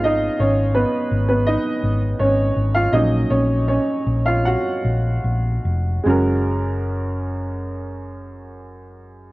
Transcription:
<<
  \new Staff \with { instrumentName = "Upright piano" } { \time 4/4 \key fis \major \tempo 4 = 77 <dis' dis''>8 <cis' cis''>8 <b b'>8. <b b'>16 <dis' dis''>4 <cis' cis''>8. <eis' eis''>16 | <dis' dis''>8 <cis' cis''>8 <cis' cis''>8. <eis' eis''>16 <fis' fis''>4. r8 | <gis cis' fis' ais'>1 | }
  \new Staff \with { instrumentName = "Upright piano" } { \time 4/4 \key fis \major <gis b dis'>4 r2. | <fis ais cis'>4. r2 r8 | fis,1 | }
  \new Staff \with { instrumentName = "Picked electric bass" } { \clef bass \time 4/4 \key fis \major gis,,8 gis,,8. r16 gis,,8. r16 gis,,8 gis,,8 gis,,8 | ais,,8 ais,,8. r16 ais,,8. r16 ais,,8 ais,,8 eis,,8 | fis,,1 | }
>>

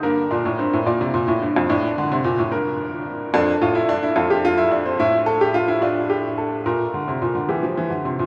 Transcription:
<<
  \new Staff \with { instrumentName = "Grand piano" } { \time 6/8 \key g \minor \tempo 4. = 72 << { bes'4. d''4.~ | d''4. bes'4. | a'4. a'4.~ | a'4. f'8 g'8 a'8 |
bes'4. g'4. | } \\ { bes8 d'8 c'8 bes4. | d'2. | d'8 f'16 e'16 d'16 e'16 f'16 g'16 f'16 e'16 d'16 c'16 | e'8 a'16 g'16 f'16 e'16 d'4. |
r2. | } >> }
  \new Staff \with { instrumentName = "Grand piano" } { \clef bass \time 6/8 \key g \minor g,8 bes,16 a,16 g,16 a,16 bes,16 c16 bes,16 a,16 g,16 f,16 | a,8 d16 c16 bes,16 a,16 g,4. | f,8 a,8 g,8 f,4. | a,2. |
bes,8 d16 c16 bes,16 d16 e16 f16 e16 d16 c16 bes,16 | }
>>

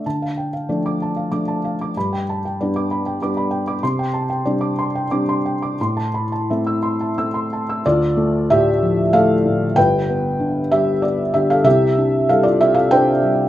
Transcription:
<<
  \new Staff \with { instrumentName = "Felt piano" } { \time 3/4 \key d \dorian \tempo 4 = 95 a''16 f''16 g''16 f''16 d''16 d'''16 a''16 f''16 d'''16 a''16 f''16 d'''16 | b''16 g''16 a''16 g''16 d''16 d'''16 b''16 g''16 d'''16 b''16 g''16 d'''16 | c'''16 g''16 a''16 g''16 d''16 d'''16 c'''16 g''16 d'''16 c'''16 g''16 d'''16 | c'''16 a''16 b''16 a''16 e''16 e'''16 c'''16 a''16 e'''16 c'''16 a''16 e'''16 |
<f' d''>4 <g' e''>4 <a' f''>4 | <b' g''>4. <g' e''>8 <g' d''>8 <g' e''>16 <a' f''>16 | <g' e''>4 <a' f''>16 <f' d''>16 <g' e''>16 <a' f''>16 <c'' g''>4 | }
  \new Staff \with { instrumentName = "Felt piano" } { \clef bass \time 3/4 \key d \dorian d4 <f a d'>4 <f a d'>4 | g,4 <g b d'>4 <g b d'>4 | c4 <g c' d'>4 <g c' d'>4 | a,4 <a c'>4 <a c'>4 |
d,8 a8 a,8 f8 a8 a,8 | <g,, g,>8 b8 d8 g8 b8 d8 | <c, c>8 d'8 g8 c'8 d'8 g8 | }
>>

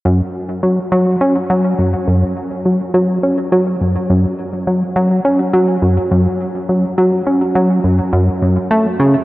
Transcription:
\new Staff \with { instrumentName = "Analog synth bass" } { \clef bass \time 4/4 \key fis \minor \tempo 4 = 104 fis,8 r8 fis8 fis8 cis'8 fis8 fis,8 fis,8 | r8 fis8 fis8 cis'8 fis8 fis,8 fis,8 r8 | fis8 fis8 cis'8 fis8 fis,8 fis,8 r8 fis8 | fis8 cis'8 fis8 fis,8 fis,8 fis,8 a8 cis8 | }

